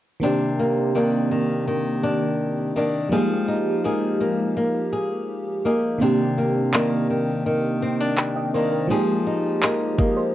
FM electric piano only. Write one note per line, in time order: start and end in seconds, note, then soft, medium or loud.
0.20 3.06 D#3 medium
0.20 3.07 A#3 medium
0.20 3.08 C4 medium
0.24 3.09 D4 medium
0.24 3.09 G4 medium
3.09 5.96 F3 medium
3.09 3.18 G3 soft
3.09 5.97 A#3 medium
3.14 6.00 G#3 medium
3.14 5.98 D#4 medium
3.14 5.99 G4 medium
5.98 8.85 D#3 medium
5.98 8.86 A#3 medium
5.98 8.86 C4 medium
6.03 8.87 D4 medium
6.03 8.88 G4 medium
8.18 8.35 G5 medium
8.36 8.53 D#5 medium
8.54 8.71 C5 medium
8.72 9.06 A#4 medium
8.87 10.35 F3 medium
8.87 10.35 G#3 medium
8.87 10.35 A#3 medium
8.92 10.35 D#4 medium
8.92 9.98 G4 medium
9.99 10.16 D#5 medium
10.17 10.34 C5 medium